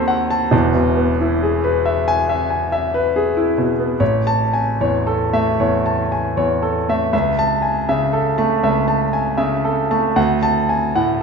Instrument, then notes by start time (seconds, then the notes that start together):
grand piano
Already playing: D#2 D#3 C4 F#4 A4 C5
0.08 F#5
0.30 A5
0.51 E1 E2
0.75 B2
0.97 B3
1.21 E4
1.43 G#4
1.64 B4
1.86 E5
2.08 G#5
2.29 E5
2.50 G#5
2.72 E5
2.94 B4
3.16 G#4
3.37 E4
3.58 B2
3.79 B3
4.00 A1 C#5
4.27 A5
4.53 G#5
4.81 E2 C#5
5.07 A4
5.33 A3 E5
5.60 E2 C#5
5.86 A5
6.12 G#5
6.37 E2 C#5
6.63 A4
6.89 A3 E5
7.13 C#2 E5
7.39 A5
7.62 G#5
7.89 C#3 E5
8.13 A4
8.38 A3 A5
8.63 C#2 E5
8.88 A5
9.13 G#5
9.38 C#3 E5
9.65 A4
9.91 A3 A5
10.16 D2 F#5
10.43 A5
10.69 G#5
10.96 A2 F#5